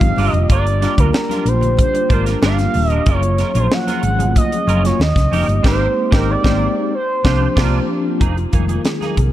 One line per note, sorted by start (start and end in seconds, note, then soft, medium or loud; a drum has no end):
0.00 0.13 G#1 medium
0.00 0.17 G3 medium
0.00 0.19 G#3 medium
0.00 0.18 C4 medium
0.00 0.18 D#4 medium
0.00 0.18 F4 medium
0.00 0.18 G4 medium
0.00 0.18 A#4 medium
0.00 0.33 F5 loud
0.00 muted clean electric guitar stroke soft
0.00 kick medium
0.00 closed hi-hat soft
0.00 high conga medium
0.16 0.29 G1 loud
0.16 0.72 G3 medium
0.16 0.72 A#3 medium
0.16 0.73 D4 medium
0.16 0.32 D4 medium
0.16 0.73 F4 medium
0.16 0.32 F4 loud
0.16 0.73 G4 medium
0.16 0.32 A#4 medium
0.16 open hi-hat medium
0.16 muted conga soft
0.16 low conga medium
0.33 0.45 F1 medium
0.33 0.47 D#5 loud
0.33 muted clean electric guitar stroke soft
0.33 closed hi-hat soft
0.50 0.85 G1 loud
0.50 0.64 D4 medium
0.50 0.64 F4 medium
0.50 0.65 A#4 loud
0.50 1.01 D5 loud
0.50 kick loud
0.50 closed hi-hat medium
0.67 closed hi-hat soft
0.81 1.23 G3 medium
0.81 1.23 A#3 medium
0.81 0.93 D4 medium
0.81 1.23 D4 medium
0.81 1.23 F4 medium
0.81 0.93 F4 medium
0.81 1.23 G4 medium
0.81 0.94 A#4 medium
0.81 snare soft
0.81 closed hi-hat medium
0.97 1.10 D2 medium
0.97 1.10 D4 soft
0.97 1.09 F4 medium
0.97 1.09 A#4 medium
0.97 1.50 A#4 medium
0.97 kick loud
0.97 closed hi-hat medium
0.97 high conga soft
1.13 muted clean electric guitar stroke soft
1.13 snare loud
1.13 muted conga soft
1.29 1.85 G3 medium
1.29 1.85 A#3 medium
1.29 1.85 D4 medium
1.29 1.44 D4 medium
1.29 1.85 F4 medium
1.29 1.44 F4 medium
1.29 1.85 G4 medium
1.29 1.44 A#4 medium
1.29 snare soft
1.29 closed hi-hat medium
1.29 high conga medium
1.45 1.81 A#1 medium
1.45 1.79 C5 medium
1.45 muted clean electric guitar stroke soft
1.45 closed hi-hat medium
1.61 muted clean electric guitar stroke medium
1.61 closed hi-hat soft
1.61 low conga medium
1.77 muted clean electric guitar stroke soft
1.77 kick loud
1.77 closed hi-hat medium
1.77 low conga medium
1.81 2.14 C5 loud
1.93 2.35 G3 medium
1.93 2.35 A#3 medium
1.93 2.36 D4 medium
1.93 2.36 F4 medium
1.93 2.36 G4 medium
1.93 muted clean electric guitar stroke medium
1.93 closed hi-hat medium
2.09 2.34 G#1 medium
2.09 2.24 D4 medium
2.09 2.25 F4 medium
2.09 2.43 A#4 medium
2.09 2.25 C5 medium
2.09 kick medium
2.09 closed hi-hat medium
2.09 muted conga soft
2.09 high conga medium
2.26 2.38 D4 soft
2.26 2.38 F4 medium
2.26 2.37 A#4 medium
2.26 snare soft
2.26 closed hi-hat medium
2.42 2.66 G1 loud
2.42 2.98 G3 medium
2.42 2.98 A#3 medium
2.42 2.56 D4 medium
2.42 2.98 D4 medium
2.42 2.57 F4 loud
2.42 2.98 F4 medium
2.42 2.98 G4 medium
2.42 2.56 A#4 loud
2.42 2.90 F5 loud
2.42 snare loud
2.42 muted conga soft
2.58 muted clean electric guitar stroke medium
2.58 snare soft
2.58 closed hi-hat medium
2.58 high conga medium
2.74 2.98 D#1 medium
2.74 muted clean electric guitar stroke soft
2.74 open hi-hat medium
2.74 muted conga soft
2.74 low conga medium
2.90 3.02 D4 medium
2.90 3.02 F4 medium
2.90 3.01 A#4 medium
2.90 3.10 D#5 loud
2.90 closed hi-hat soft
3.06 3.42 F#1 loud
3.06 3.62 F#3 medium
3.06 3.62 A#3 medium
3.06 3.21 C#4 medium
3.06 3.62 C#4 medium
3.06 3.62 F4 medium
3.06 3.21 F4 medium
3.06 3.62 G#4 medium
3.06 3.22 A#4 loud
3.06 3.59 C#5 loud
3.06 kick loud
3.06 closed hi-hat medium
3.06 muted conga soft
3.23 closed hi-hat soft
3.38 3.50 C#4 medium
3.38 3.50 F4 medium
3.38 3.50 A#4 medium
3.38 snare soft
3.38 closed hi-hat medium
3.38 muted conga soft
3.54 3.67 A#1 medium
3.54 3.67 C#4 medium
3.54 3.66 F4 medium
3.54 3.66 A#4 medium
3.54 3.75 C5 medium
3.54 closed hi-hat medium
3.54 high conga medium
3.71 4.13 F3 medium
3.71 4.12 F#3 medium
3.71 4.12 A#3 medium
3.71 4.13 C#4 medium
3.71 4.13 G#4 medium
3.71 4.36 F#5 loud
3.71 muted clean electric guitar stroke soft
3.71 snare loud
3.87 4.02 C#4 medium
3.87 4.02 F4 medium
3.87 4.01 A#4 medium
3.87 snare soft
3.87 closed hi-hat medium
3.87 high conga medium
4.03 4.38 G#1 medium
4.03 muted clean electric guitar stroke soft
4.03 closed hi-hat medium
4.03 muted conga soft
4.18 4.74 F#3 medium
4.18 4.25 A3 medium
4.18 4.74 C#4 medium
4.18 4.75 F4 medium
4.18 4.75 G#4 medium
4.18 muted clean electric guitar stroke soft
4.18 closed hi-hat medium
4.18 low conga medium
4.25 4.78 A#3 medium
4.35 4.87 D#5 loud
4.35 kick medium
4.35 closed hi-hat loud
4.35 muted conga soft
4.35 low conga medium
4.52 muted clean electric guitar stroke soft
4.52 closed hi-hat medium
4.67 4.91 F#1 medium
4.67 4.82 C#4 medium
4.67 4.82 F4 loud
4.67 4.82 A#4 medium
4.67 closed hi-hat medium
4.67 muted conga soft
4.67 high conga medium
4.83 4.99 F#3 medium
4.83 4.99 A#3 medium
4.83 5.00 C#4 medium
4.83 5.00 F4 medium
4.83 5.00 G#4 medium
4.83 5.03 C#5 medium
4.83 muted clean electric guitar stroke soft
4.83 snare soft
4.83 closed hi-hat medium
5.00 5.11 D#2 loud
5.00 5.65 D#5 loud
5.00 snare loud
5.00 muted conga soft
5.16 5.27 C#2 loud
5.16 muted clean electric guitar stroke soft
5.16 kick medium
5.16 snare soft
5.16 closed hi-hat medium
5.16 high conga medium
5.31 5.44 F1 medium
5.31 5.63 F3 medium
5.31 5.62 A#3 medium
5.31 5.46 C#4 medium
5.31 5.64 C#4 medium
5.31 5.63 D#4 medium
5.31 5.63 G4 medium
5.31 5.46 G4 loud
5.31 5.47 A#4 medium
5.31 open hi-hat medium
5.31 low conga medium
5.48 5.59 G1 medium
5.48 muted clean electric guitar stroke soft
5.48 closed hi-hat soft
5.63 5.86 G#1 loud
5.63 5.85 G#3 loud
5.63 5.85 A#3 loud
5.63 5.85 C4 medium
5.63 5.86 D#4 medium
5.63 5.86 G4 loud
5.63 5.86 A#4 medium
5.63 kick loud
5.63 snare loud
5.63 crash medium
5.67 6.10 C5 loud
6.11 6.34 G#1 loud
6.11 6.33 G#3 loud
6.11 6.34 A#3 medium
6.11 6.34 C4 loud
6.11 6.34 C4 medium
6.11 6.34 D#4 loud
6.11 6.34 G4 medium
6.11 6.34 G4 loud
6.11 6.33 A#4 loud
6.11 kick loud
6.11 snare loud
6.15 6.32 A#4 medium
6.31 6.94 D5 loud
6.43 6.66 G#1 loud
6.43 6.65 G#3 loud
6.43 6.65 A#3 medium
6.43 6.65 C4 loud
6.43 6.67 C4 medium
6.43 6.66 D#4 medium
6.43 6.66 G4 loud
6.43 6.66 G4 medium
6.43 6.66 A#4 medium
6.43 kick loud
6.43 snare loud
6.95 7.86 C5 medium
7.24 7.46 C2 medium
7.24 7.46 F3 loud
7.24 7.46 A#3 loud
7.24 7.46 C4 medium
7.24 7.46 D4 loud
7.24 7.47 F4 medium
7.24 7.46 G4 loud
7.24 7.47 C5 loud
7.24 kick loud
7.24 snare loud
7.55 7.78 C2 loud
7.55 7.78 F3 medium
7.55 7.79 A#3 loud
7.55 7.79 C4 loud
7.55 7.78 D4 loud
7.55 7.79 D4 loud
7.55 7.79 F4 loud
7.55 7.79 A#4 medium
7.55 kick loud
7.55 snare loud
7.55 crash medium
7.64 7.83 G4 loud
8.20 8.44 F1 medium
8.20 8.35 A#3 medium
8.20 8.35 D#4 medium
8.20 8.36 D#4 medium
8.20 8.36 G#4 medium
8.20 kick loud
8.20 closed hi-hat medium
8.37 8.52 F4 medium
8.37 closed hi-hat soft
8.52 8.77 F1 medium
8.52 9.32 D#3 medium
8.52 9.32 G3 soft
8.52 9.32 G#3 soft
8.52 8.64 A#3 medium
8.52 9.32 A#3 medium
8.52 8.64 D#4 medium
8.52 8.65 G#4 medium
8.52 8.68 A#4 medium
8.52 kick medium
8.52 closed hi-hat medium
8.68 8.81 A#3 soft
8.68 8.81 D#4 soft
8.68 8.80 G#4 medium
8.68 closed hi-hat medium
8.68 high conga soft
8.85 9.01 G#4 medium
8.85 muted clean electric guitar stroke soft
8.85 snare loud
8.85 closed hi-hat medium
8.85 muted conga soft
9.01 9.16 A#3 medium
9.01 9.16 D#4 medium
9.01 9.15 G#4 medium
9.01 9.18 G#4 medium
9.01 snare soft
9.01 closed hi-hat soft
9.01 high conga medium
9.17 9.32 C2 medium
9.17 9.32 A#4 medium
9.17 muted clean electric guitar stroke soft
9.17 kick medium
9.17 closed hi-hat medium